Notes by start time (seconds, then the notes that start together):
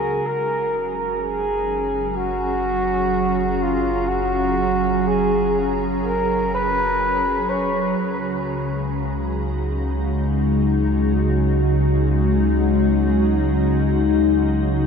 Already playing: C#2 C#3 F#3 G#3 D#4 F#4 G#4
0.24 F#1 F#3 A#4
0.35 C#4
1.21 G#4
1.54 A#5
2.09 G#4
2.16 F#4
3.63 F4
4.08 F#4
5.07 G#4
6.05 A#4
6.55 B4
7.50 C#5
8.00 C#2 C#3
8.57 G#3
8.88 F#4
9.14 D#4